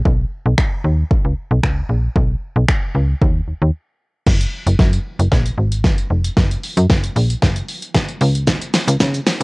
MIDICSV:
0, 0, Header, 1, 3, 480
1, 0, Start_track
1, 0, Tempo, 526316
1, 49, Time_signature, 4, 2, 24, 8
1, 8602, End_track
2, 0, Start_track
2, 0, Title_t, "FM bass"
2, 0, Program_c, 0, 39
2, 50, Note_on_c, 0, 35, 110
2, 228, Note_off_c, 0, 35, 0
2, 418, Note_on_c, 0, 35, 91
2, 501, Note_off_c, 0, 35, 0
2, 770, Note_on_c, 0, 39, 88
2, 948, Note_off_c, 0, 39, 0
2, 1137, Note_on_c, 0, 37, 84
2, 1220, Note_off_c, 0, 37, 0
2, 1376, Note_on_c, 0, 35, 93
2, 1460, Note_off_c, 0, 35, 0
2, 1489, Note_on_c, 0, 37, 89
2, 1668, Note_off_c, 0, 37, 0
2, 1728, Note_on_c, 0, 34, 86
2, 1907, Note_off_c, 0, 34, 0
2, 1970, Note_on_c, 0, 35, 113
2, 2148, Note_off_c, 0, 35, 0
2, 2336, Note_on_c, 0, 35, 97
2, 2420, Note_off_c, 0, 35, 0
2, 2688, Note_on_c, 0, 37, 91
2, 2867, Note_off_c, 0, 37, 0
2, 2930, Note_on_c, 0, 39, 103
2, 3108, Note_off_c, 0, 39, 0
2, 3170, Note_on_c, 0, 39, 46
2, 3220, Note_off_c, 0, 39, 0
2, 3297, Note_on_c, 0, 39, 92
2, 3381, Note_off_c, 0, 39, 0
2, 3889, Note_on_c, 0, 30, 109
2, 4068, Note_off_c, 0, 30, 0
2, 4255, Note_on_c, 0, 30, 97
2, 4340, Note_off_c, 0, 30, 0
2, 4369, Note_on_c, 0, 42, 103
2, 4548, Note_off_c, 0, 42, 0
2, 4735, Note_on_c, 0, 30, 95
2, 4820, Note_off_c, 0, 30, 0
2, 4850, Note_on_c, 0, 34, 110
2, 5028, Note_off_c, 0, 34, 0
2, 5088, Note_on_c, 0, 32, 89
2, 5329, Note_on_c, 0, 30, 94
2, 5343, Note_off_c, 0, 32, 0
2, 5507, Note_off_c, 0, 30, 0
2, 5568, Note_on_c, 0, 29, 89
2, 5747, Note_off_c, 0, 29, 0
2, 5810, Note_on_c, 0, 30, 103
2, 5988, Note_off_c, 0, 30, 0
2, 6174, Note_on_c, 0, 42, 96
2, 6259, Note_off_c, 0, 42, 0
2, 6288, Note_on_c, 0, 30, 91
2, 6467, Note_off_c, 0, 30, 0
2, 6527, Note_on_c, 0, 34, 98
2, 6706, Note_off_c, 0, 34, 0
2, 6769, Note_on_c, 0, 30, 103
2, 6948, Note_off_c, 0, 30, 0
2, 7487, Note_on_c, 0, 37, 110
2, 7844, Note_off_c, 0, 37, 0
2, 8093, Note_on_c, 0, 37, 101
2, 8178, Note_off_c, 0, 37, 0
2, 8208, Note_on_c, 0, 49, 104
2, 8387, Note_off_c, 0, 49, 0
2, 8602, End_track
3, 0, Start_track
3, 0, Title_t, "Drums"
3, 50, Note_on_c, 9, 36, 109
3, 141, Note_off_c, 9, 36, 0
3, 529, Note_on_c, 9, 26, 110
3, 530, Note_on_c, 9, 36, 116
3, 620, Note_off_c, 9, 26, 0
3, 621, Note_off_c, 9, 36, 0
3, 1010, Note_on_c, 9, 36, 111
3, 1102, Note_off_c, 9, 36, 0
3, 1490, Note_on_c, 9, 36, 108
3, 1491, Note_on_c, 9, 26, 100
3, 1581, Note_off_c, 9, 36, 0
3, 1582, Note_off_c, 9, 26, 0
3, 1970, Note_on_c, 9, 36, 107
3, 2061, Note_off_c, 9, 36, 0
3, 2450, Note_on_c, 9, 26, 119
3, 2450, Note_on_c, 9, 36, 113
3, 2541, Note_off_c, 9, 26, 0
3, 2541, Note_off_c, 9, 36, 0
3, 2931, Note_on_c, 9, 36, 111
3, 3022, Note_off_c, 9, 36, 0
3, 3889, Note_on_c, 9, 36, 109
3, 3889, Note_on_c, 9, 38, 50
3, 3889, Note_on_c, 9, 49, 93
3, 3980, Note_off_c, 9, 36, 0
3, 3980, Note_off_c, 9, 38, 0
3, 3980, Note_off_c, 9, 49, 0
3, 4019, Note_on_c, 9, 42, 59
3, 4111, Note_off_c, 9, 42, 0
3, 4257, Note_on_c, 9, 42, 78
3, 4348, Note_off_c, 9, 42, 0
3, 4369, Note_on_c, 9, 38, 59
3, 4370, Note_on_c, 9, 36, 118
3, 4461, Note_off_c, 9, 36, 0
3, 4461, Note_off_c, 9, 38, 0
3, 4496, Note_on_c, 9, 42, 51
3, 4588, Note_off_c, 9, 42, 0
3, 4738, Note_on_c, 9, 42, 68
3, 4829, Note_off_c, 9, 42, 0
3, 4849, Note_on_c, 9, 38, 58
3, 4850, Note_on_c, 9, 36, 118
3, 4940, Note_off_c, 9, 38, 0
3, 4941, Note_off_c, 9, 36, 0
3, 4977, Note_on_c, 9, 42, 46
3, 5068, Note_off_c, 9, 42, 0
3, 5217, Note_on_c, 9, 42, 79
3, 5308, Note_off_c, 9, 42, 0
3, 5329, Note_on_c, 9, 36, 108
3, 5329, Note_on_c, 9, 38, 62
3, 5420, Note_off_c, 9, 36, 0
3, 5421, Note_off_c, 9, 38, 0
3, 5456, Note_on_c, 9, 42, 44
3, 5547, Note_off_c, 9, 42, 0
3, 5696, Note_on_c, 9, 42, 72
3, 5787, Note_off_c, 9, 42, 0
3, 5809, Note_on_c, 9, 36, 111
3, 5809, Note_on_c, 9, 38, 66
3, 5900, Note_off_c, 9, 36, 0
3, 5900, Note_off_c, 9, 38, 0
3, 5940, Note_on_c, 9, 42, 61
3, 6031, Note_off_c, 9, 42, 0
3, 6051, Note_on_c, 9, 46, 85
3, 6142, Note_off_c, 9, 46, 0
3, 6176, Note_on_c, 9, 42, 83
3, 6267, Note_off_c, 9, 42, 0
3, 6288, Note_on_c, 9, 38, 75
3, 6289, Note_on_c, 9, 36, 114
3, 6380, Note_off_c, 9, 36, 0
3, 6380, Note_off_c, 9, 38, 0
3, 6415, Note_on_c, 9, 42, 53
3, 6506, Note_off_c, 9, 42, 0
3, 6529, Note_on_c, 9, 46, 71
3, 6620, Note_off_c, 9, 46, 0
3, 6656, Note_on_c, 9, 42, 68
3, 6747, Note_off_c, 9, 42, 0
3, 6768, Note_on_c, 9, 38, 74
3, 6769, Note_on_c, 9, 36, 113
3, 6859, Note_off_c, 9, 38, 0
3, 6860, Note_off_c, 9, 36, 0
3, 6894, Note_on_c, 9, 42, 48
3, 6985, Note_off_c, 9, 42, 0
3, 7009, Note_on_c, 9, 46, 79
3, 7100, Note_off_c, 9, 46, 0
3, 7135, Note_on_c, 9, 42, 75
3, 7226, Note_off_c, 9, 42, 0
3, 7246, Note_on_c, 9, 38, 84
3, 7247, Note_on_c, 9, 36, 114
3, 7337, Note_off_c, 9, 38, 0
3, 7339, Note_off_c, 9, 36, 0
3, 7374, Note_on_c, 9, 42, 44
3, 7466, Note_off_c, 9, 42, 0
3, 7486, Note_on_c, 9, 46, 79
3, 7577, Note_off_c, 9, 46, 0
3, 7616, Note_on_c, 9, 42, 75
3, 7707, Note_off_c, 9, 42, 0
3, 7727, Note_on_c, 9, 38, 87
3, 7727, Note_on_c, 9, 82, 71
3, 7728, Note_on_c, 9, 36, 117
3, 7818, Note_off_c, 9, 38, 0
3, 7819, Note_off_c, 9, 36, 0
3, 7819, Note_off_c, 9, 82, 0
3, 7857, Note_on_c, 9, 42, 61
3, 7857, Note_on_c, 9, 82, 61
3, 7948, Note_off_c, 9, 42, 0
3, 7948, Note_off_c, 9, 82, 0
3, 7968, Note_on_c, 9, 38, 89
3, 7970, Note_on_c, 9, 46, 87
3, 7970, Note_on_c, 9, 82, 61
3, 8060, Note_off_c, 9, 38, 0
3, 8062, Note_off_c, 9, 46, 0
3, 8062, Note_off_c, 9, 82, 0
3, 8097, Note_on_c, 9, 42, 83
3, 8097, Note_on_c, 9, 82, 82
3, 8188, Note_off_c, 9, 42, 0
3, 8188, Note_off_c, 9, 82, 0
3, 8208, Note_on_c, 9, 36, 122
3, 8209, Note_on_c, 9, 38, 93
3, 8210, Note_on_c, 9, 82, 77
3, 8299, Note_off_c, 9, 36, 0
3, 8300, Note_off_c, 9, 38, 0
3, 8301, Note_off_c, 9, 82, 0
3, 8335, Note_on_c, 9, 42, 57
3, 8335, Note_on_c, 9, 82, 57
3, 8426, Note_off_c, 9, 42, 0
3, 8426, Note_off_c, 9, 82, 0
3, 8448, Note_on_c, 9, 38, 95
3, 8450, Note_on_c, 9, 46, 74
3, 8450, Note_on_c, 9, 82, 51
3, 8539, Note_off_c, 9, 38, 0
3, 8541, Note_off_c, 9, 46, 0
3, 8541, Note_off_c, 9, 82, 0
3, 8602, End_track
0, 0, End_of_file